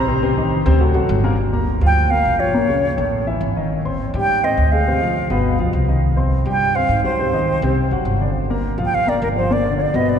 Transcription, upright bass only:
Already playing: A1
0.66 D2
0.94 A1
1.09 G1
1.81 D2
2.25 A#1
2.98 A1
3.41 G#1
4.14 G#2
4.57 D2
5.30 G1
5.58 B1
5.73 C2
6.46 G2
6.89 G#2
7.62 C2
7.91 G#1
8.05 G1
8.78 A#1
9.22 G1
9.94 G1

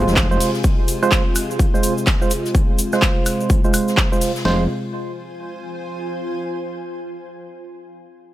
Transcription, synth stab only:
Already playing: G#3 F4 C5
0.31 G#3 F4 C5
1.03 G#3 F4 C5
1.74 G#3 F4 C5
2.22 G#3 F4 C5
2.93 G#3 F4 C5
3.64 G#3 F4 C5
4.12 G#3 F4 C5
4.45 G#3 F4 C5

